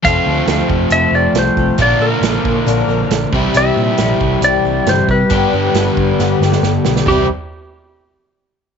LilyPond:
<<
  \new Staff \with { instrumentName = "Electric slide guitar" } { \time 4/4 \key c \mixolydian \tempo 4 = 136 f''4. r8 e''8 d''8 c''4 | d''8 bes'2. r8 | e''2 d''4 c''8 b'8~ | b'2. r4 |
g'8 r2. r8 | }
  \new Staff \with { instrumentName = "Twelve-string acoustic guitar" } { \time 4/4 \key c \mixolydian <f c' f' a'>4 <f c' f' a'>4 <f c' f' a'>8 <c' f' a'>4 <c' f' a'>8 | <bes, d f bes d' bes'>8 <f bes d' bes'>8 <f bes d' bes'>4 <bes, d f bes d' bes'>8 <f bes d' bes'>4 <c' e' g'>8 | <c g c' e' g'>8 <c' e' g'>8 <g c' e' g'>4 <c g c' e' g'>8 <c' e' g'>4 <c' e' g'>8 | <g, d g b d' g'>8 <g b d' g'>8 <g b d' g'>4 <g, d g b d' g'>8 <g b d' g'>4 <g b d' g'>8 |
<c g c' e' g'>8 r2. r8 | }
  \new Staff \with { instrumentName = "Overdriven electric guitar" } { \time 4/4 \key c \mixolydian <f a c' f'>1 | <bes, d bes d' f'>2.~ <bes, d bes d' f'>8 <c e g c' e'>8~ | <c e g c' e'>2.~ <c e g c' e'>8 r8 | <g, d g b d' g'>1 |
<c e g c' e'>8 r2. r8 | }
  \new Staff \with { instrumentName = "Picked electric bass" } { \clef bass \time 4/4 \key c \mixolydian f,,8 d,8 d,8 f,,8 f,,8 f,,8 c,8 c,8 | bes,,8 bes,8 bes,,8 bes,8 bes,,8 bes,,8 bes,,8 c,8 | c,8 bes,8 bes,,8 c,8 c,8 c,8 g,,8 c8 | g,,8 g,8 g,,8 g,8 g,,8 g,,8 g,,8 b,,8 |
c,8 r2. r8 | }
  \new DrumStaff \with { instrumentName = "Drums" } \drummode { \time 4/4 <hh bd>4 <hh sn>8 bd8 hh4 <hh sn>8 bd8 | <hh bd>4 <hh sn>8 bd8 hh4 <hh sn>8 bd8 | hh4 <hh sn>8 bd8 hh4 <hh sn>8 bd8 | <hh bd>4 <hh sn>8 bd8 sn8 sn16 sn16 sn8 sn16 sn16 |
<bd tomfh>4 r4 r4 r4 | }
>>